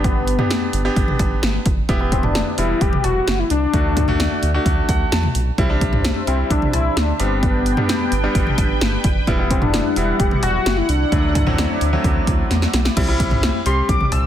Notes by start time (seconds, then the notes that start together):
Already playing: G1 B3 D4 G4
0.04 B3, kick, closed hi-hat
0.28 closed hi-hat
0.39 B3 D4 G4, mid tom
0.51 snare, closed hi-hat
0.73 G1, closed hi-hat
0.85 B3 D4 G4
0.96 G1, kick, closed hi-hat
1.08 mid tom
1.19 G1, kick, closed hi-hat, cowbell
1.43 G1, snare, closed hi-hat
1.66 F#1, kick, closed hi-hat
1.89 E1 B3 E4 G4, kick, closed hi-hat
2.00 B3 E4 G4
2.12 C4, kick, closed hi-hat
2.23 D4, mid tom
2.35 snare, closed hi-hat
2.58 E1 G3 B3 E4, closed hi-hat
2.81 E1 G4, kick, closed hi-hat
2.93 mid tom
3.04 E1 F#4, closed hi-hat, cowbell
3.27 F#1, snare, closed hi-hat
3.39 E4
3.50 C2 D4, closed hi-hat
3.74 D2 A3 D4 F#4, kick, closed hi-hat
3.97 kick, closed hi-hat, mid tom, cowbell
4.08 A3 D4 F#4, mid tom
4.20 snare, closed hi-hat
4.43 D2, closed hi-hat
4.54 A3 D4 F#4
4.66 D2, kick, closed hi-hat
4.89 D2 F#5, kick, closed hi-hat
5.12 E2 A5, snare, closed hi-hat
5.23 mid tom
5.35 B1, closed hi-hat
5.58 C2 G3 C4 D4 E4 C5 E5, kick, closed hi-hat
5.70 G3 C4 D4
5.81 kick, closed hi-hat
5.93 mid tom
6.05 snare, closed hi-hat
6.27 C2 G3 C4 E4, closed hi-hat
6.50 C2 D4, kick, closed hi-hat
6.62 mid tom
6.73 C2 E4, closed hi-hat, cowbell
6.97 D2 D4, snare, closed hi-hat
7.20 G1 G3 B3 C4 D4 B4 G5, closed hi-hat
7.43 B3, kick, closed hi-hat
7.66 closed hi-hat
7.77 G3 B3 D4, mid tom
7.89 snare, closed hi-hat
8.12 G1, closed hi-hat
8.24 G3 B3 D4
8.35 G1, kick, closed hi-hat
8.47 mid tom
8.58 G1, kick, closed hi-hat, cowbell
8.81 G1, snare, closed hi-hat
9.04 F#1, kick, closed hi-hat
9.27 E1 G3 B3 E4 F#5, kick, closed hi-hat
9.39 G3 B3 E4
9.51 C4, kick, closed hi-hat
9.62 D4, mid tom
9.74 snare, closed hi-hat
9.96 E1 G3 B3 E4, closed hi-hat
10.20 E1 G4, kick, closed hi-hat
10.31 mid tom
10.43 E1 F#4, closed hi-hat, cowbell
10.66 F#1, snare, closed hi-hat
10.77 E4
10.89 C2 D4, closed hi-hat
11.12 D2 F#3 A3 D4 E4 D5, kick, closed hi-hat
11.35 kick, closed hi-hat, mid tom, cowbell
11.47 F#3 A3 C4, mid tom
11.58 snare, closed hi-hat
11.81 D2, closed hi-hat
11.93 F#3 A3 C4
12.04 D2, kick, closed hi-hat
12.27 D2, kick, closed hi-hat
12.51 E2, snare, closed hi-hat
12.62 snare
12.73 B1, snare, closed hi-hat
12.85 snare
12.97 C2 G3 C4 E4, kick, closed hi-hat, crash
13.08 G3 C4 E4
13.20 kick, closed hi-hat
13.31 mid tom
13.43 snare, closed hi-hat
13.66 C2 G3 C4 G4 C6, closed hi-hat
13.89 C2 D6, kick, closed hi-hat
14.01 mid tom
14.12 C2 E6, closed hi-hat, cowbell